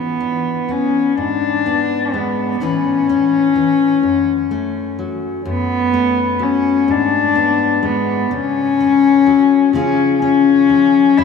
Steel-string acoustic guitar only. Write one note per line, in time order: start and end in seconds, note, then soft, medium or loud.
0.00 1.17 E3 medium
0.20 1.12 D4 soft
0.69 1.12 B3 soft
1.18 2.55 G#2 medium
1.66 2.56 B3 soft
2.14 2.56 G#3 medium
2.60 3.98 A2 medium
2.60 3.54 E3 soft
2.60 3.08 C#4 soft
2.60 3.99 E4 soft
2.60 3.99 B4 medium
3.09 3.99 C#4 soft
3.56 4.04 E3 soft
4.03 5.44 F#2 medium
4.51 5.92 A3 medium
4.99 5.41 F#3 medium
5.45 6.88 F#2 medium
5.94 6.89 A3 medium
6.39 6.82 F#3 medium
6.88 8.25 G#2 medium
7.35 8.25 B3 medium
7.83 8.25 G#3 medium
8.31 9.26 C#3 medium
8.80 9.69 C#4 soft
9.26 9.68 F#3 medium
9.73 10.69 C#3 medium
9.73 10.68 F3 medium
9.73 10.21 C#4 medium
9.73 11.13 F4 medium
9.73 11.13 G#4 medium
10.22 11.12 C#4 soft
10.69 11.12 F3 medium
11.17 11.24 F#2 medium
11.17 11.24 A3 medium